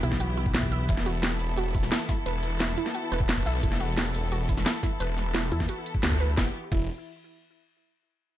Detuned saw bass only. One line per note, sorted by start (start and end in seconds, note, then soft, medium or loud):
0.89 1.39 E1 loud
1.40 1.90 E1 loud
2.26 2.76 E1 medium
3.12 3.45 E1 medium
3.46 3.62 B1 medium
3.63 4.13 E1 medium
4.15 4.65 E1 loud
5.00 5.50 E1 loud
6.03 6.36 D2 loud
6.37 6.47 E1 medium
6.72 6.88 E1 medium